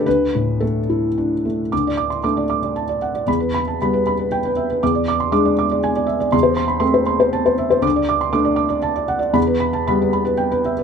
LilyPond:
<<
  \new Staff \with { instrumentName = "Felt piano" } { \time 3/4 \key d \mixolydian \tempo 4 = 117 b'4 a'4. r8 | d'''16 d''16 d'''16 c'''16 d'''16 d''16 d'''16 d''16 a''16 d''16 fis''16 d''16 | b''16 b'16 b''16 a''16 b''16 b'16 b''16 b'16 g''16 b'16 e''16 b'16 | d'''16 d''16 d'''16 c'''16 d'''16 d''16 d'''16 d''16 gis''16 d''16 e''16 d''16 |
c'''16 c''16 c'''16 b''16 c'''16 c''16 c'''16 c''16 a''16 c''16 e''16 c''16 | d'''16 d''16 d'''16 c'''16 d'''16 d''16 d'''16 d''16 a''16 d''16 fis''16 d''16 | b''16 b'16 b''16 a''16 b''16 b'16 b''16 b'16 g''16 b'16 e''16 b'16 | }
  \new Staff \with { instrumentName = "Felt piano" } { \time 3/4 \key d \mixolydian d,8 a,8 a8 e'8 d'8 a8 | d,4 <a d'>2 | e,4 <g b>2 | e,4 <gis d'>2 |
e,4 <a c'>2 | d,4 <a d'>2 | e,4 <g b>2 | }
>>